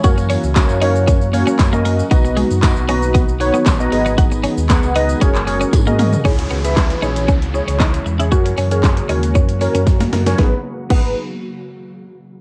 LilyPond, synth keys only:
\new Staff \with { instrumentName = "Synth keys" } { \time 4/4 \key gis \minor \tempo 4 = 116 <ais cis' fis' ais' cis''>8. r16 <ais cis' fis' ais' cis''>8 <ais cis' fis' ais' cis''>8. r16 <ais cis' fis' ais' cis''>8. <ais cis' fis' ais' dis''>8. | <b dis' fis' b' dis''>8. r16 <b dis' fis' b' dis''>8 <b dis' fis' b' dis''>8. r16 <b dis' fis' b' cis''>8. <b dis' fis' b' dis''>16 <b dis' gis' b' dis''>8~ | <b dis' gis' b' dis''>8. r16 <b dis' gis' b' fis''>8 <b dis' gis' b' dis''>8 <cis' fis' gis' ais' cis''>8 <cis' fis' gis' ais' cis''>8. <cis' fis' gis' ais' dis''>8. | <cis' e' gis' cis''>8. <cis' e' gis' e''>8. <cis' e' gis' cis''>8. r16 <cis' e' gis' cis''>4 r16 <cis' e' gis' cis''>16 |
<cis' fis' ais' cis''>8. <cis' fis' ais' cis''>8. <cis' fis' ais' cis''>8. r16 <cis' fis' ais' cis''>4 r16 <cis' fis' ais' cis''>16 | <b dis' gis' b'>16 r8. <b dis' gis' b'>8 r2 r8 | }